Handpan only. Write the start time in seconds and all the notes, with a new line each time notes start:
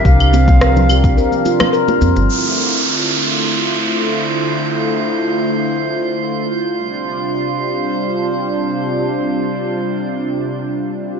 0.05 G4
0.33 C4
0.61 A#4
0.89 G4
1.17 A#4
1.45 F4
1.73 A#4
1.88 F4
2.01 C4